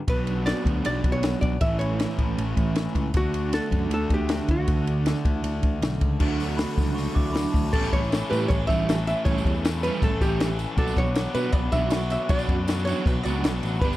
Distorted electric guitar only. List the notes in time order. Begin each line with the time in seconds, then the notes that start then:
0.07 B2 F#3 B3 D4 F#4
1.62 A2 E3 A3 C#4 E4
3.14 D3 A3 D4 F#4
6.19 D3 A3 D4 F#4
7.73 A2 E3 A3 C#4 A4
8.12 A2 E3 A3 C#4 A4
8.32 A3 C#4 A4
8.69 A3 C#4 A4
8.88 E3 A3 C#4 A4
9.27 A2 E3 A3 C#4 A4
9.63 A2 E3 A3 C#4 A4
9.83 A3 C#4 A4
10.21 A3 C#4 A4
10.39 E3 A3 C#4 A4
10.76 B2 F#3 B3 D4 F#4
11.15 B2 F#3 B3 D4 F#4
11.34 B3 D4 F#4
11.73 B3 D4 F#4
11.90 F#3 B3 D4 F#4
12.29 B2 F#3 B3 D4 F#4
12.68 B2 F#3 B3 D4 F#4
12.86 B3 D4 F#4
13.24 B3 D4 F#4
13.43 F#3 B3 D4 F#4
13.81 G2 D3 G3 B3 D4 G4